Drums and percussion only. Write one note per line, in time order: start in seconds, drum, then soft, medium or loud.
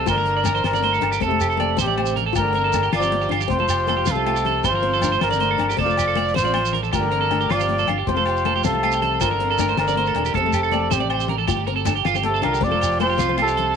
0.06 kick medium
0.06 closed hi-hat medium
0.06 high conga medium
0.06 low agogo medium
0.06 shekere medium
0.17 low conga medium
0.27 closed hi-hat soft
0.45 closed hi-hat soft
0.45 high conga medium
0.45 low conga medium
0.45 low agogo medium
0.45 shekere loud
0.56 shekere soft
0.64 snare medium
0.64 closed hi-hat medium
0.64 low conga soft
0.64 low agogo medium
0.74 low conga medium
0.74 shekere medium
0.83 closed hi-hat soft
0.83 high conga medium
0.94 shekere soft
1.02 closed hi-hat soft
1.02 low conga medium
1.02 low agogo medium
1.13 low conga soft
1.13 shekere medium
1.20 kick medium
1.20 closed hi-hat medium
1.20 high conga medium
1.20 low conga soft
1.20 shekere soft
1.30 low conga medium
1.41 closed hi-hat soft
1.41 low agogo medium
1.41 shekere medium
1.51 shekere soft
1.60 closed hi-hat soft
1.60 high conga medium
1.60 low conga medium
1.60 low agogo medium
1.78 snare medium
1.78 closed hi-hat medium
1.78 shekere loud
1.89 low conga medium
1.98 closed hi-hat medium
1.98 high conga medium
1.98 low agogo medium
2.06 shekere medium
2.17 closed hi-hat soft
2.17 low conga medium
2.35 kick medium
2.35 closed hi-hat medium
2.35 high conga medium
2.35 low agogo medium
2.35 shekere loud
2.45 low conga medium
2.54 closed hi-hat soft
2.73 closed hi-hat soft
2.73 high conga medium
2.73 low conga medium
2.73 low agogo medium
2.73 shekere loud
2.83 shekere soft
2.93 snare medium
2.93 closed hi-hat medium
2.93 low agogo medium
3.02 low conga medium
3.02 shekere medium
3.12 closed hi-hat soft
3.12 high conga medium
3.22 shekere soft
3.31 closed hi-hat medium
3.31 low conga medium
3.31 low agogo medium
3.40 low conga soft
3.40 shekere medium
3.50 kick medium
3.50 closed hi-hat medium
3.50 high conga medium
3.50 low conga soft
3.50 shekere soft
3.60 low conga medium
3.69 closed hi-hat soft
3.69 low agogo medium
3.69 shekere loud
3.88 closed hi-hat soft
3.88 high conga medium
3.88 low conga medium
3.88 low agogo medium
4.06 snare medium
4.06 closed hi-hat medium
4.06 shekere medium
4.16 low conga medium
4.26 closed hi-hat soft
4.26 high conga medium
4.26 low agogo medium
4.36 shekere medium
4.45 closed hi-hat soft
4.45 low conga medium
4.64 kick medium
4.64 closed hi-hat medium
4.64 high conga medium
4.64 low conga soft
4.64 low agogo medium
4.64 shekere loud
4.73 low conga medium
4.83 closed hi-hat soft
4.93 low conga soft
4.93 shekere soft
5.01 closed hi-hat soft
5.01 high conga medium
5.01 low conga medium
5.01 low agogo medium
5.01 shekere loud
5.21 snare medium
5.21 closed hi-hat medium
5.21 low agogo medium
5.31 low conga medium
5.31 shekere medium
5.40 closed hi-hat medium
5.40 high conga medium
5.40 shekere soft
5.59 closed hi-hat medium
5.59 low conga medium
5.59 low agogo medium
5.70 shekere medium
5.78 kick medium
5.78 closed hi-hat medium
5.78 high conga medium
5.78 low conga soft
5.78 shekere soft
5.88 low conga medium
5.88 shekere soft
5.97 snare soft
5.97 closed hi-hat medium
5.97 low conga soft
5.97 low agogo medium
5.97 shekere medium
6.07 low conga soft
6.07 shekere soft
6.16 closed hi-hat medium
6.16 high conga medium
6.16 low conga medium
6.16 low agogo medium
6.25 low conga soft
6.25 shekere soft
6.34 snare medium
6.34 closed hi-hat medium
6.34 low conga soft
6.34 shekere loud
6.45 low conga medium
6.45 shekere soft
6.54 closed hi-hat medium
6.54 high conga medium
6.54 low agogo medium
6.65 shekere medium
6.73 closed hi-hat medium
6.73 low conga medium
6.84 shekere soft
6.93 kick medium
6.93 closed hi-hat medium
6.93 high conga medium
6.93 low agogo medium
6.93 shekere medium
7.03 low conga medium
7.12 closed hi-hat soft
7.31 closed hi-hat soft
7.31 high conga medium
7.31 low conga medium
7.31 low agogo medium
7.41 shekere soft
7.50 snare medium
7.50 closed hi-hat medium
7.50 low agogo medium
7.59 low conga medium
7.59 shekere medium
7.69 closed hi-hat soft
7.69 high conga medium
7.79 shekere soft
7.87 closed hi-hat soft
7.87 low conga medium
7.87 low agogo medium
7.98 low conga soft
8.07 kick medium
8.07 closed hi-hat medium
8.07 high conga medium
8.07 low conga soft
8.07 shekere soft
8.17 low conga medium
8.26 snare soft
8.26 closed hi-hat soft
8.26 low agogo medium
8.37 shekere soft
8.45 closed hi-hat soft
8.45 high conga medium
8.45 low conga medium
8.45 low agogo medium
8.64 snare medium
8.64 closed hi-hat medium
8.64 shekere loud
8.74 low conga medium
8.83 closed hi-hat medium
8.83 high conga medium
8.83 low agogo medium
8.91 shekere medium
9.02 closed hi-hat medium
9.02 low conga medium
9.21 kick medium
9.21 closed hi-hat medium
9.21 high conga medium
9.21 low agogo medium
9.21 shekere loud
9.31 low conga medium
9.40 closed hi-hat medium
9.58 closed hi-hat soft
9.58 high conga loud
9.58 low conga loud
9.58 low agogo medium
9.58 shekere loud
9.77 snare medium
9.77 closed hi-hat medium
9.77 low conga soft
9.77 low agogo medium
9.87 low conga medium
9.87 shekere medium
9.96 closed hi-hat medium
9.96 high conga medium
10.06 shekere soft
10.15 closed hi-hat medium
10.15 low conga medium
10.15 low agogo medium
10.25 shekere medium
10.34 kick medium
10.34 closed hi-hat medium
10.34 high conga medium
10.34 low conga soft
10.34 shekere soft
10.43 low conga medium
10.53 closed hi-hat soft
10.53 low agogo medium
10.53 shekere loud
10.63 shekere soft
10.72 closed hi-hat soft
10.72 high conga medium
10.72 low conga medium
10.72 low agogo medium
10.91 snare medium
10.91 closed hi-hat medium
10.91 shekere loud
11.00 low conga medium
11.10 closed hi-hat soft
11.10 low agogo medium
11.20 shekere medium
11.28 closed hi-hat soft
11.28 low conga medium
11.48 kick medium
11.48 closed hi-hat medium
11.48 high conga loud
11.48 low agogo medium
11.48 shekere medium
11.57 low conga medium
11.67 closed hi-hat medium
11.85 closed hi-hat soft
11.85 high conga loud
11.85 low conga loud
11.85 low agogo medium
11.85 shekere loud
11.96 shekere soft
12.05 snare medium
12.05 closed hi-hat medium
12.05 low conga soft
12.05 low agogo medium
12.14 low conga medium
12.14 shekere medium
12.23 closed hi-hat medium
12.23 high conga medium
12.35 shekere soft
12.43 closed hi-hat medium
12.43 low conga loud
12.43 low agogo medium
12.53 low conga soft
12.53 shekere medium
12.61 kick medium
12.61 closed hi-hat medium
12.61 high conga medium
12.61 low conga soft
12.61 shekere soft
12.72 low conga medium
12.81 closed hi-hat soft
12.81 low agogo medium
12.81 shekere loud
12.92 shekere soft
13.00 closed hi-hat medium
13.00 high conga medium
13.00 low agogo medium
13.19 snare medium
13.19 closed hi-hat medium
13.19 shekere loud
13.30 low conga medium
13.38 closed hi-hat medium
13.38 high conga loud
13.38 low agogo medium
13.48 shekere medium
13.57 closed hi-hat medium
13.57 low conga medium